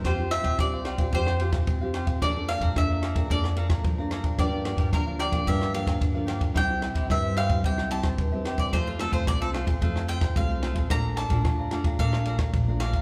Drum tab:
RD |x-xxx-xxx-xxx-xx|x-xxx-xxx-xxx-xx|x-xxx-xxx-xxx-xx|x-xxx-xxx-xxx-xx|
SD |r-r-r-r--r-r--r-|r-r-r-r--r-r--r-|r-r-r-r--r-r--r-|r-r-r-r--r-r--r-|
BD |o--oo--oo--oo--o|o--oo--oo--oo--o|o--oo--oo--oo--o|o--oo--oo--oo--o|

RD |x-xxx-xxx-xxx-xx|x-xxx-xxx-xxx-xx|
SD |r-r-r-r--r-r--r-|r-r-r-r--r-r--r-|
BD |o--oo--oo--oo--o|o--oo--oo--oo--o|